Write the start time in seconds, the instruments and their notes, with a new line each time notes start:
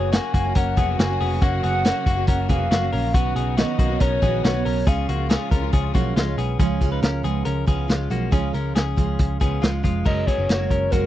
Already playing: picked electric bass F#1, string section C#3 F#3 A#3 F#4, steel-string acoustic guitar F#3 A#3 C#4 F#4, clean electric guitar B3 G#4, soft synth lead C#5
0.12 steel-string acoustic guitar F#3 A#3 C#4 F#4, clean electric guitar A#3 F#4, soft synth lead G#5, snare, closed hi-hat
0.34 picked electric bass F#1, clean electric guitar A#3 F#4, kick, closed hi-hat
0.44 steel-string acoustic guitar A#3 C#4 F#4
0.55 picked electric bass F#1, clean electric guitar C#4 A#4, soft synth lead F#5, kick, closed hi-hat
0.76 picked electric bass F1, steel-string acoustic guitar F#3 A#3 C#4 F#4, clean electric guitar B3 G#4, kick, closed hi-hat
0.99 picked electric bass F#1, clean electric guitar A#3 F#4, soft synth lead G#5, snare, closed hi-hat
1.09 steel-string acoustic guitar A#3 C#4 F#4
1.20 picked electric bass F1, clean electric guitar B3 G#4, open hi-hat
1.41 picked electric bass F#1, steel-string acoustic guitar F#3 A#3 C#4 F#4, clean electric guitar A#3 F#4, soft synth lead F#5, kick, closed hi-hat
1.63 picked electric bass F#1, clean electric guitar B3 G#4, soft synth lead F#5, closed hi-hat
1.85 steel-string acoustic guitar F#3 A#3 C#4 F#4, clean electric guitar A#3 F#4, snare, closed hi-hat
2.06 picked electric bass F#1, clean electric guitar A#3 F#4, kick, closed hi-hat
2.16 steel-string acoustic guitar A#3 C#4 F#4
2.27 picked electric bass F#1, clean electric guitar C#4 A#4, soft synth lead F#5, kick, closed hi-hat
2.48 picked electric bass F1, steel-string acoustic guitar F#3 A#3 C#4 F#4, clean electric guitar B3 G#4, soft synth lead F5, kick, closed hi-hat
2.71 picked electric bass F#1, clean electric guitar A#3 F#4, snare, closed hi-hat
2.81 steel-string acoustic guitar A#3 C#4 F#4
2.93 picked electric bass A#1, clean electric guitar C#4 A#4, open hi-hat
3.14 picked electric bass B1, steel-string acoustic guitar D#3 B3 C#4 F#4, string section B3 D#4, clean electric guitar B3 F#4, soft synth lead F#5, kick, closed hi-hat
3.36 picked electric bass B1, clean electric guitar B3 G#4, closed hi-hat
3.57 steel-string acoustic guitar D#3 B3 C#4 F#4, clean electric guitar B3 F#4, soft synth lead D#5, snare, closed hi-hat
3.79 picked electric bass B1, clean electric guitar A#3 F#4, kick, closed hi-hat
3.89 steel-string acoustic guitar B3 C#4 F#4
4.00 picked electric bass B1, clean electric guitar C#4 A#4, soft synth lead C#5, kick, closed hi-hat
4.21 picked electric bass A#1, steel-string acoustic guitar D#3 B3 C#4 F#4, clean electric guitar B3 G#4, kick, closed hi-hat
4.44 picked electric bass B1, clean electric guitar B3 F#4, soft synth lead C#5, snare, closed hi-hat
4.54 steel-string acoustic guitar B3 C#4 F#4
4.65 picked electric bass B1, clean electric guitar C#4 A#4, open hi-hat
4.86 picked electric bass C#2, string section C#3 F3 G#3 F4, steel-string acoustic guitar F3 G#3 C#4 F4, clean electric guitar C#4 G#4, soft synth lead F5, kick, closed hi-hat
5.09 picked electric bass C#2, clean electric guitar A#3 F#4, closed hi-hat
5.29 steel-string acoustic guitar F3 G#3 C#4 F4, clean electric guitar C#4 G#4, snare, closed hi-hat
5.51 picked electric bass C#2, clean electric guitar C#4 A#4, kick, closed hi-hat
5.62 steel-string acoustic guitar G#3 C#4 F4
5.72 picked electric bass C#2, clean electric guitar C#4 G#4, kick, closed hi-hat
5.94 picked electric bass B1, steel-string acoustic guitar F3 G#3 C#4 F4, clean electric guitar A#3 F#4, kick, closed hi-hat
6.16 picked electric bass C#2, clean electric guitar G#3 F4, snare, closed hi-hat
6.26 steel-string acoustic guitar G#3 C#4 F4
6.38 picked electric bass B1, clean electric guitar B3 G#4, closed hi-hat
6.59 picked electric bass C#2, steel-string acoustic guitar C#3 F3 G#3 C#4 F4, clean electric guitar C#4 G#4, kick, closed hi-hat
6.80 picked electric bass C#2, steel-string acoustic guitar F3 G#3 C#4 F4, kick, closed hi-hat
6.92 clean electric guitar D#4 B4
7.02 picked electric bass C#2, clean electric guitar C#4 A#4, snare, closed hi-hat
7.23 picked electric bass C#2, steel-string acoustic guitar F3 G#3 C#4 F4, clean electric guitar B3 G#4, closed hi-hat
7.45 picked electric bass C#2, clean electric guitar C#4 A#4, closed hi-hat
7.66 picked electric bass C#2, steel-string acoustic guitar F3 G#3 C#4 F4, clean electric guitar B3 G#4, kick, closed hi-hat
7.88 picked electric bass C#2, steel-string acoustic guitar F3 G#3 C#4 F4, clean electric guitar G#3 F4, snare, closed hi-hat
8.10 picked electric bass B1, steel-string acoustic guitar F3 G#3 C#4 F4, clean electric guitar A#3 F#4, closed hi-hat
8.32 picked electric bass C#2, steel-string acoustic guitar C#3 F3 G#3 C#4 F4, clean electric guitar C#4 G#4, kick, closed hi-hat
8.53 picked electric bass C#2, steel-string acoustic guitar F3 G#3 C#4 F4, clean electric guitar C#4 A#4, closed hi-hat
8.76 picked electric bass C#2, clean electric guitar C#4 G#4, snare, closed hi-hat
8.96 picked electric bass C#2, steel-string acoustic guitar F3 G#3 C#4 F4, kick, closed hi-hat
9.19 picked electric bass C#2, kick, closed hi-hat
9.40 picked electric bass C#2, steel-string acoustic guitar F3 G#3 C#4 F4, clean electric guitar B3 G#4, kick, closed hi-hat
9.62 picked electric bass C#2, steel-string acoustic guitar F3 G#3 C#4 F4, clean electric guitar G#3 F4, snare, closed hi-hat
9.83 picked electric bass F1, steel-string acoustic guitar F3 G#3 C#4 F4, clean electric guitar G#3 F4, kick, closed hi-hat
10.05 picked electric bass F#1, steel-string acoustic guitar G#3 C#4 F#4 A#4, clean electric guitar C#4 A#4, soft synth lead D#5, kick, crash
10.27 clean electric guitar B3 G#4, soft synth lead C#5, kick, closed hi-hat
10.38 picked electric bass F#1, steel-string acoustic guitar C#4 F#4 A#4
10.49 picked electric bass F#1, clean electric guitar A#3 F#4, snare, closed hi-hat
10.59 steel-string acoustic guitar F#3 G#3 C#4 F#4 A#4
10.71 picked electric bass F#1, clean electric guitar C#4 A#4, kick, closed hi-hat
10.91 picked electric bass F#1, steel-string acoustic guitar F#3 G#3 C#4 F#4 A#4, clean electric guitar A#3 F#4, soft synth lead A#4, kick, closed hi-hat